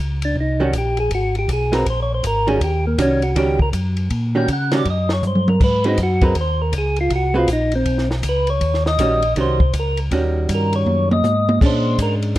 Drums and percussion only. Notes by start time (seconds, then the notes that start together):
0.22 ride
0.36 kick
0.73 kick, hi-hat pedal, ride
0.97 ride
1.11 kick, ride
1.35 ride
1.49 kick, hi-hat pedal, ride
1.73 snare, ride
1.86 kick, ride
2.23 kick, hi-hat pedal, ride
2.48 ride
2.61 kick, ride
2.98 kick, hi-hat pedal, ride
3.22 ride
3.36 kick, ride
3.59 kick
3.73 kick, hi-hat pedal, ride
3.97 ride
4.10 kick, ride
4.48 kick, hi-hat pedal, ride
4.71 snare, ride
4.85 kick, ride
5.09 snare
5.23 hi-hat pedal, mid tom
5.35 mid tom
5.48 mid tom
5.61 kick, crash
5.84 ride
5.98 kick, hi-hat pedal, ride
6.21 kick, ride
6.35 kick, ride
6.73 kick, hi-hat pedal, ride
6.96 ride
7.10 kick, ride
7.48 kick, hi-hat pedal, ride
7.72 ride
7.86 kick, ride
7.98 snare
8.11 snare
8.23 kick, hi-hat pedal, ride
8.47 ride
8.61 kick, ride
8.74 snare
8.86 snare
8.99 kick, hi-hat pedal, ride
9.22 ride
9.36 kick, ride
9.60 kick
9.73 kick, hi-hat pedal, ride
9.97 ride
10.11 kick, ride
10.49 kick, hi-hat pedal, ride
10.73 ride
10.86 high tom
11.11 high tom
11.24 hi-hat pedal, high tom
11.49 high tom
11.61 kick, crash
11.99 kick, hi-hat pedal, ride
12.22 ride
12.36 ride